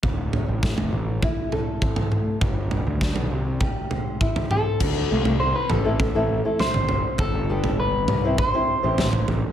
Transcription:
<<
  \new Staff \with { instrumentName = "Clean electric guitar" } { \time 4/4 \key a \minor \tempo 4 = 101 r1 | r2. r8 a'8~ | a'4 c''16 b'16 a'4. c''4 | a'4 b'4 c''4. r8 | }
  \new Staff \with { instrumentName = "Steel-string acoustic guitar" } { \time 4/4 \key a \minor d,8 a,8 a8 a,8 e'8 a'8 c'8 a8 | g,8 g8 d'8 c8 g'8 c''8 e'8 c'8 | r8 <a, d a f'>16 r4 <a c' e' a'>16 r16 <a c' e' a'>16 r16 <a c' e' a'>16 r4 | r8 <g b d' g'>16 r4 <c' e' g' c''>16 r16 <c' e' g' c''>16 r16 <c' e' g' c''>16 r4 | }
  \new Staff \with { instrumentName = "Picked electric bass" } { \clef bass \time 4/4 \key a \minor d,,8. a,,8 f,,16 a,,8 r2 | g,,8. d,8 b,,16 c,8 r2 | d,8 c,16 c,8 r16 a,,8. a,,8 r8 g,,8 r16 | g,,16 g,,4~ g,,16 c,8 r8. a,,8. a,,16 r16 | }
  \new DrumStaff \with { instrumentName = "Drums" } \drummode { \time 4/4 <bd tomfh>8 tomfh8 <bd sn>16 tomfh8. <bd tomfh>8 tomfh8 <bd toml>16 <tomfh toml>16 toml8 | <bd tomfh>8 tomfh8 <bd sn>16 tomfh8. <bd tomfh>8 tomfh8 <bd toml>16 <tomfh toml>16 toml8 | <cymc bd tomfh>8. tomfh16 r8 <tomfh toml>8 <bd tomfh>4 <sn tomfh>16 tomfh16 tomfh8 | <bd tomfh>8. tomfh16 r8 <tomfh toml>8 <bd tomfh>4 <sn tomfh>16 tomfh16 tomfh8 | }
>>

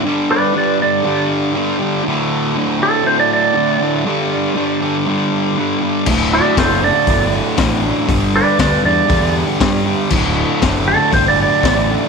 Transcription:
<<
  \new Staff \with { instrumentName = "Electric slide guitar" } { \time 4/4 \key g \major \tempo 4 = 119 r8 <b' d''>8 <b' d''>8 d''4 r4. | r4. a'8 c''16 d''16 d''4.~ | d''4. r2 r8 | r8 <fis' d''>8 <a' c''>8 d''4 r4. |
r8 <b' d''>8 <b' d''>8 d''4 r4. | r4. a'8 c''16 d''16 d''4. | }
  \new Staff \with { instrumentName = "Distorted electric guitar" } { \clef bass \time 4/4 \key g \major <g, d g>4 <g, d g>8 <d g>8 <g, d g>4 <g, d g>8 <d g>8 | <d, a, d>4 <d, a, d>8 <a, d>8 <d, a, d>4 <d, a, d>8 <a, d>8 | <g, d g>4 <g, d g>8 <d g>8 <g, d g>4 <g, d g>8 <d g>8 | <d, a, d>4 <d, a, d>8 <a, d>8 <d, a, d>4 <d, a, d>8 <a, d>8 |
<g, d g>4 <g, d g>8 <d g>8 <g, d g>4 <g, d g>8 <d g>8 | <d, a, d>4 <d, a, d>8 <a, d>8 <d, a, d>4 <d, a, d>8 <a, d>8 | }
  \new Staff \with { instrumentName = "Fingered electric bass" } { \clef bass \time 4/4 \key g \major r1 | r1 | r1 | d,,4 fis,,4 g,,4 a,,4 |
g,,4 d,8 e,8 e,4 g,4 | d,,4 fis,,4 g,,4 a,,4 | }
  \new DrumStaff \with { instrumentName = "Drums" } \drummode { \time 4/4 r4 r4 r4 r4 | r4 r4 r4 r4 | r4 r4 r4 r4 | <cymc bd>4 <hho bd sn>4 <hho bd>4 <hho bd sn>4 |
<hho bd>4 <hho bd sn>4 <hho bd>4 <hho bd sn>4 | <cymc bd>4 <hho bd sn>4 <hho bd>4 <hho bd sn>4 | }
>>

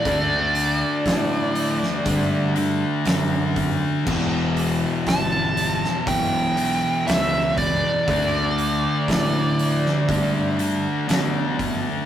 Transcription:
<<
  \new Staff \with { instrumentName = "Lead electric guitar" } { \time 4/4 \key d \mixolydian \tempo 4 = 60 d''2~ d''8 r4. | r4 a''4 g''4 e''8 d''8~ | d''2~ d''8 r4. | }
  \new Staff \with { instrumentName = "Distorted electric guitar" } { \clef bass \time 4/4 \key d \mixolydian <d a d'>2~ <d a d'>8 <d a d'>8 <d a d'>4 | <e, b, e>2~ <e, b, e>8 <e, b, e>8 <e, b, e>4 | <d a d'>2~ <d a d'>8 <d a d'>8 <d a d'>4 | }
  \new Staff \with { instrumentName = "Distorted electric guitar" } { \clef bass \time 4/4 \key d \mixolydian <d a d'>1 | <e, b, e>1 | <d a d'>1 | }
  \new Staff \with { instrumentName = "Overdriven electric guitar" } { \clef bass \time 4/4 \key d \mixolydian <d a d'>2 <d a d'>2 | <e, b, e>2 <e, b, e>2 | <d a d'>2 <d a d'>2 | }
  \new Staff \with { instrumentName = "Picked electric bass" } { \clef bass \time 4/4 \key d \mixolydian d,4 a,4 g,4 fis,4 | e,,4 g,,4 b,,4 cis,4 | d,4 a,4 g,4 b,4 | }
  \new DrumStaff \with { instrumentName = "Drums" } \drummode { \time 4/4 <hho bd>8 hho8 <hho bd sn>8 hho16 sn16 <hho bd>8 hho8 <hho sn>8 <hho bd>8 | <cymc bd>8 hho8 <hho bd sn>8 hho16 sn16 <hho bd>8 hho8 <hho sn>8 <hho bd>8 | <hho bd>8 hho8 <hho bd sn>8 hho16 sn16 <hho bd>8 hho8 <hho sn>8 <hho bd>8 | }
>>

